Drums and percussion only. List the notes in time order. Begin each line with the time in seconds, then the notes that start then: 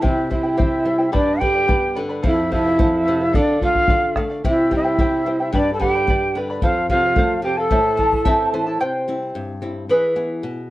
0.04 bombo low
0.32 bombo low
0.60 bombo low
1.15 bombo low
1.42 bombo low
1.69 bombo low
2.24 bombo low
2.52 bombo low
2.79 bombo low
3.34 bombo low
3.61 bombo low
3.75 bombo low
3.88 bombo low
4.16 bombo rim, bombo low
4.44 bombo low
4.72 bombo low
4.99 bombo low
5.54 bombo low
5.81 bombo low
6.08 bombo low
6.62 bombo low
6.89 bombo low
7.16 bombo low
7.71 bombo low
7.99 bombo low
8.13 bombo low
8.25 bombo low